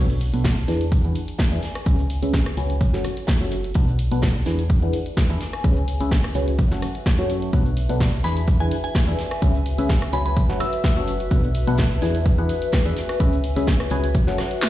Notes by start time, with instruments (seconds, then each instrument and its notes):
Already playing: fm bass B1, fm electric piano B2 D4 A4 B4 F#5, ambient pad F#4 B4 E5
0.10 closed hi-hat
0.21 closed hi-hat, open hi-hat
0.30 fm bass B1, fm electric piano B2 D4 A4 B4 F#5, ambient pad A5, closed hi-hat
0.44 kick, snare, closed hi-hat
0.57 closed hi-hat
0.68 fm bass E2, fm electric piano E3 D4 G#4 B4 G#5, snare, closed hi-hat, open hi-hat
0.81 closed hi-hat
0.92 kick, closed hi-hat
0.98 ambient pad G#5
1.04 fm bass E2, fm electric piano E3 D4 G#4 B4 F#5, closed hi-hat
1.15 closed hi-hat, open hi-hat
1.28 closed hi-hat
1.39 kick, snare, closed hi-hat
1.52 fm bass E2, fm electric piano D4 G#4 B4 E5, closed hi-hat
1.62 snare, closed hi-hat, open hi-hat
1.75 cross-stick, closed hi-hat
1.86 fm bass C#2, fm electric piano C#3 C#4 G#4 B4 E5, kick, closed hi-hat
1.99 closed hi-hat
2.10 closed hi-hat, open hi-hat
2.23 fm bass C#2, fm electric piano C#3 C#4 G#4 B4 E5, closed hi-hat
2.34 kick, snare, closed hi-hat
2.46 cross-stick, closed hi-hat
2.57 fm bass C#2, fm electric piano F#3 C#4 G#4 B4 G#5, closed hi-hat, open hi-hat
2.70 closed hi-hat
2.81 kick, closed hi-hat
2.93 fm bass F#1, fm electric piano F#3 C#4 F#4 A4 F#5, snare, closed hi-hat
3.05 cross-stick, closed hi-hat, open hi-hat
3.17 closed hi-hat
3.27 kick, snare, closed hi-hat
3.41 fm bass F#1, fm electric piano F#3 C#4 F#4 A4 E5, closed hi-hat
3.51 closed hi-hat, open hi-hat
3.64 closed hi-hat
3.74 fm bass B1, fm electric piano B2 D4 A4 B4 F#5, ambient pad F#4, kick, closed hi-hat
3.88 closed hi-hat
3.99 closed hi-hat, open hi-hat
4.08 fm bass B1, fm electric piano B2 D4 A4 B4 F#5, ambient pad A5, closed hi-hat
4.22 kick, snare, closed hi-hat
4.35 closed hi-hat
4.46 fm bass E2, fm electric piano E3 D4 G#4 B4 G#5, snare, closed hi-hat, open hi-hat
4.59 ambient pad B4, closed hi-hat
4.70 kick, closed hi-hat
4.82 fm bass E2, fm electric piano E3 D4 G#4 B4 F#5, ambient pad E5, closed hi-hat
4.87 ambient pad G#5
4.93 closed hi-hat, open hi-hat
5.06 closed hi-hat
5.17 kick, snare, closed hi-hat
5.30 fm bass E2, fm electric piano D4 G#4 B4 E5, closed hi-hat
5.40 snare, closed hi-hat, open hi-hat
5.53 cross-stick, closed hi-hat
5.64 fm bass C#2, fm electric piano C#3 C#4 G#4 B4 E5, kick, closed hi-hat
5.77 closed hi-hat
5.88 closed hi-hat, open hi-hat
6.00 fm bass C#2, fm electric piano C#3 C#4 G#4 B4 E5, closed hi-hat
6.11 kick, snare, closed hi-hat
6.24 cross-stick, closed hi-hat
6.34 fm bass C#2, fm electric piano F#3 C#4 G#4 B4 G#5, closed hi-hat, open hi-hat
6.48 closed hi-hat
6.58 kick, closed hi-hat
6.71 fm bass F#1, fm electric piano F#3 C#4 F#4 A4 F#5, snare, closed hi-hat
6.82 cross-stick, closed hi-hat, open hi-hat
6.95 closed hi-hat
7.06 kick, snare, closed hi-hat
7.19 fm bass F#2, fm electric piano F#3 C#4 F#4 A4 C#5, closed hi-hat
7.30 closed hi-hat, open hi-hat
7.42 closed hi-hat
7.53 fm bass B1, fm electric piano B2 D4 A4 B4 F#5, kick, closed hi-hat
7.66 closed hi-hat
7.77 closed hi-hat, open hi-hat
7.86 fm bass B1, fm electric piano B2 D4 A4 B4 F#5, ambient pad A5, closed hi-hat
8.00 kick, snare, closed hi-hat
8.13 closed hi-hat
8.24 fm bass E2, fm electric piano E3 D4 G#4 B4 G#5, synth bell B5, snare, closed hi-hat, open hi-hat
8.37 ambient pad G#5, closed hi-hat
8.48 kick, closed hi-hat
8.60 fm bass E2, fm electric piano E3 D4 G#4 B4 F#5, synth bell G#5, closed hi-hat
8.71 closed hi-hat, open hi-hat
8.84 synth bell G#5, closed hi-hat
8.95 kick, snare, closed hi-hat
9.08 fm bass E2, fm electric piano D4 G#4 B4 E5, closed hi-hat
9.19 snare, closed hi-hat, open hi-hat
9.31 cross-stick, closed hi-hat
9.42 fm bass C#2, fm electric piano C#3 C#4 G#4 B4 E5, kick, closed hi-hat
9.55 closed hi-hat
9.66 closed hi-hat, open hi-hat
9.78 fm bass C#2, fm electric piano C#3 C#4 G#4 B4 E5, closed hi-hat
9.89 kick, snare, closed hi-hat
10.02 cross-stick, closed hi-hat
10.13 fm bass C#2, fm electric piano F#3 C#4 G#4 B4 G#5, synth bell B5, closed hi-hat, open hi-hat
10.26 synth bell B5, closed hi-hat
10.37 kick, closed hi-hat
10.49 fm bass F#1, fm electric piano F#3 C#4 F#4 A4 F#5, snare, closed hi-hat
10.60 synth bell E6, cross-stick, closed hi-hat, open hi-hat
10.73 closed hi-hat
10.84 kick, snare, closed hi-hat
10.97 fm bass F#1, fm electric piano F#3 C#4 F#4 A4 E5, closed hi-hat
11.08 closed hi-hat, open hi-hat
11.20 closed hi-hat
11.31 fm bass B1, fm electric piano B2 D4 A4 B4 F#5, kick, closed hi-hat
11.44 closed hi-hat
11.55 closed hi-hat, open hi-hat
11.64 fm bass B1, fm electric piano B2 D4 A4 B4 F#5, ambient pad A5, closed hi-hat
11.78 kick, snare, closed hi-hat
11.91 closed hi-hat
12.02 fm bass E2, fm electric piano E3 D4 G#4 B4 G#5, snare, closed hi-hat, open hi-hat
12.15 closed hi-hat
12.26 kick, closed hi-hat
12.38 fm bass E2, fm electric piano E3 D4 G#4 B4 F#5, closed hi-hat
12.45 ambient pad G#5
12.49 closed hi-hat, open hi-hat
12.62 closed hi-hat
12.72 kick, snare, closed hi-hat
12.85 fm bass E2, fm electric piano D4 G#4 B4 E5, closed hi-hat
12.97 snare, closed hi-hat, open hi-hat
13.09 cross-stick, closed hi-hat
13.20 fm bass C#2, fm electric piano C#3 C#4 G#4 B4 E5, kick, closed hi-hat
13.33 closed hi-hat
13.44 closed hi-hat, open hi-hat
13.56 fm bass C#2, fm electric piano C#3 C#4 G#4 B4 E5, closed hi-hat
13.67 kick, snare, closed hi-hat
13.80 cross-stick, closed hi-hat
13.90 fm bass C#2, fm electric piano F#3 C#4 G#4 B4 G#5, closed hi-hat, open hi-hat
14.04 closed hi-hat
14.15 kick, closed hi-hat
14.27 fm bass F#1, fm electric piano F#3 C#4 F#4 A4 F#5, snare, closed hi-hat
14.38 cross-stick, snare, closed hi-hat, open hi-hat
14.51 closed hi-hat
14.62 snare, clap, closed hi-hat